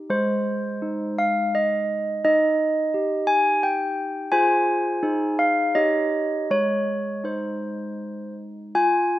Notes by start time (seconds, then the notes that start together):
Already playing: G4
0.10 G#3 C5
0.82 D#4
1.19 F5
1.55 D#5
2.24 D#4 D#5
2.94 G4
3.27 G#5
3.63 G5
4.32 F4 G#4 C5 G#5
5.03 D#4 G#4 C5
5.39 F5
5.75 D#4 G4 C#5 D#5
6.50 G#3 C#5
7.24 D#4 C5
8.75 F4 G#5